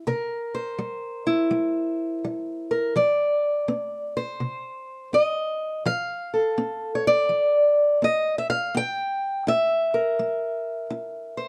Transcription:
steel-string acoustic guitar
0.07 C3 A#4
0.55 C5
0.79 G3
1.27 E4
1.51 G3
2.25 G3
2.71 A#4
2.96 F3 D5
3.68 C4
4.17 C5
4.40 C3
5.13 C4 D#5
5.86 F3 F5
6.34 A4
6.58 C4
6.95 C#5
7.07 D5
7.29 F3
8.02 C4 D#5
8.38 E5
8.50 F5
8.75 C4 G5
9.47 E4 E5
9.94 A#4
10.19 G3
10.90 E4
11.37 C5

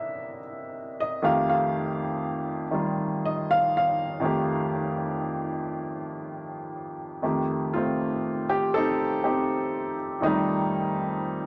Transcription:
upright piano
Already playing: C3 A#3 D4 E4 D#5 E5
1.00 D#5
1.22 F2 D#3 A3 G4 F5
1.50 F5
2.71 D#3 G3 F4
3.26 D#5
3.51 F5
3.77 F5
4.20 F2 D#3 A3
4.25 G4
7.22 F2 D#3 A3 G4
7.74 A3 C4 F4
8.49 G4
8.74 C4 D#4 A4
9.24 C4 D#4 G4
10.21 F2 D#3 A3 D#4
10.26 G3 G4

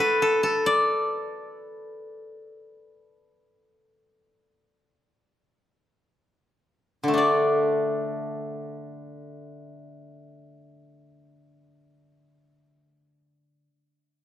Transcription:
guzheng
Already playing: F#4 A4 D5
0.00 B4
0.22 A4
0.43 A4
0.66 D5
7.04 D3
7.08 A3
7.14 D4
7.18 D5

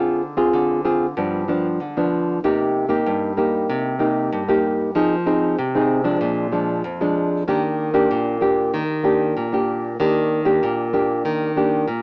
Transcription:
nylon-string guitar
Already playing: D3 C4 F4 G#4
0.37 C4 F4 G#4
0.53 D3
0.85 C4 F4 G#4
1.17 G2 F3 B3 D4
1.48 F3 B3 D4
1.80 D3
1.97 F3 B3 D4
2.44 C3 A#3 D#4 G4
2.89 A#3 D#4 G4
3.07 G2
3.37 A#3 D#4 G4
3.70 C3
3.99 A#3 D#4 G4
4.33 G2
4.49 A#3 D#4 G4
4.95 F3 C4 D#4 G#4
5.27 C4 D#4 G#4
5.59 C3
5.75 C4 D#4 G#4
6.04 F3 G#3 D4
6.21 A#2
6.52 F3 G#3 D4
6.84 F2
7.01 F3 G#3 D4
7.48 D#3 A#3 D4 G4
7.94 A#3 D4 G4
8.11 A#2
8.41 A#3 D4 G4
8.74 D#3
9.04 A#3 D4 G4
9.37 A#2
9.52 A#3 D4 G4
10.00 D#3 A#3 D4 G4
10.45 A#3 D4 G4
10.63 A#2
10.93 A#3 D4 G4
11.25 D#3
11.56 A#3 D4 G4
11.88 A#2

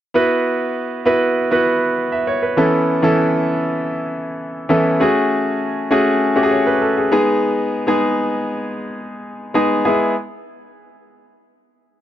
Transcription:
grand piano
0.14 B3 E4 F#4 B4
1.05 B3 E4 F#4 B4
1.51 B3 E4 F#4 B4
2.12 E5
2.27 C#5
2.43 B4
2.57 E3 B3 C#4 E4 A4
3.02 E3 B3 C#4 E4 A4
4.69 E3 B3 C#4 E4 A4
5.00 A3 C#4 F#4 G#4
5.91 A3 C#4 F#4 G#4
6.36 A3 C#4 F#4 G4
6.43 G#4
6.51 C#5
6.67 B4
6.82 A4
6.97 G#4
7.11 G#3 B3 D#4 G#4
7.87 G#3 B3 D#4 G#4
9.54 G#3 B3 D#4 G#4
9.85 G#3 B3 E4 G#4

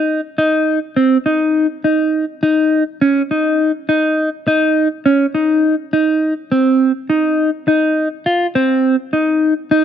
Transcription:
clean electric guitar
Already playing: D#4
0.38 D#4
0.96 C4
1.26 D#4
1.84 D#4
2.43 D#4
3.01 C#4
3.31 D#4
3.89 D#4
4.48 D#4
5.06 C#4
5.35 D#4
5.93 D#4
6.52 C4
7.10 D#4
7.68 D#4
8.26 F4
8.55 C4
9.13 D#4
9.71 D#4

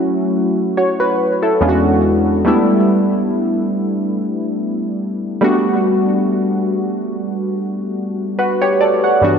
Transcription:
synth keys
Already playing: F#3 A3 C#4 E4 F#4
0.77 F#4 C#5
1.00 F#4 B4
1.42 E4 A4
1.61 E2 G#3 B3 C#4 D4 F4
1.69 F#4
2.45 G3 A3 B3 D4 E4
5.41 G3 A3 B3 D4 F#4
8.39 F#4 B4
8.62 G4 C#5
8.81 A4 D5
9.04 C#5 F#5
9.22 G2 E3 G3 B3 D4 F#4

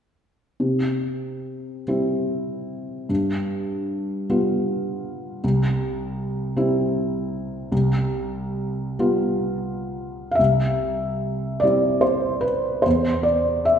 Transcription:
felt piano
0.60 C3
1.88 G3 C4 E4
3.09 G2
4.30 G3 B3 F4
5.44 C2
6.56 G3 C4 E4
7.72 C2
8.99 G3 B3 F4
10.31 E5 F5
10.39 C2
11.60 G3 C4 D5
11.64 E4
12.01 C5
12.41 B4
12.82 E2 C5
13.23 D5
13.65 E5

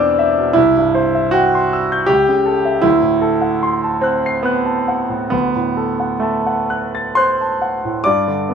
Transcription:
grand piano
Already playing: E2 B2 B3 C4 D4 D5 E5 G5 E6 G6
0.00 D6
0.19 E5
0.37 B2
0.53 C2 E4
0.76 G2
0.95 C5
1.15 E5
1.31 F#4 G5
1.55 C6
1.73 E6
1.92 G6
2.06 C#2 G4
2.29 C#3
2.46 A4
2.65 E5
2.82 D2 E4
3.02 A2
3.22 A4
3.41 F#5
3.63 C6
3.84 A5
4.01 C4 F#6
4.26 C7
4.43 B3 F#6
4.66 A5
4.88 F#5
5.09 A2
5.30 D2 B3
5.55 A2
5.77 A4
6.00 F#5
6.20 A3 A5
6.46 F#5
6.70 F#6
6.95 A6
7.15 C5 C6 F#6
7.41 A5
7.62 F#5
7.85 A2
8.04 G2 D5 D6
8.28 D3
8.49 B3

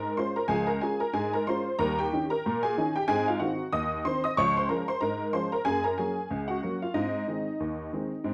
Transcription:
honky-tonk piano
Already playing: G#2 A#4 A#5
0.17 G#3 C#4 F4 C5 C6
0.36 A#4 A#5
0.48 C#2 F3 G#4 G#5
0.67 A#4 A#5
0.81 G#3 C#4 F4 G#4 G#5
1.00 A#4 A#5
1.13 G#2 G#4 G#5
1.33 A#4 A#5
1.47 G#3 C#4 F4 C5 C6
1.79 D#2 G3 A#4 A#5
1.99 G4 G5
2.13 D#3 C#4 D#4
2.30 A#4 A#5
2.46 A#2
2.63 G#4 G#5
2.78 D#3 C#4 D#4
2.96 G4 G5
3.08 G#2 C4 G#4 G#5
3.28 F4 F5
3.40 D#3 C4 D#4 F#4 F#5
3.73 D#2 D#5 D#6
4.05 D#3 C4 D#4 C5 C6
4.24 D#5 D#6
4.37 C#2 F3 C#5 C#6
4.57 C5 C6
4.69 F3 G#3 C#4 A#4 A#5
4.88 C5 C6
5.01 G#2 A#4 A#5
5.33 F3 G#3 C#4 C5 C6
5.52 A#4 A#5
5.65 F#2 A#3 G#4 G#5
5.84 A#4 A#5
5.98 F#3 A#3 C#4 G#4 G#5
6.31 C#2
6.48 F#4 F#5
6.63 F#3 A#3 C#4
6.82 F4 F5
6.94 G#2 C4 D#4 D#5
7.28 D#3 G#3 C4
7.60 D#2
7.93 D#3 G#3 C4
8.24 G#2 C4

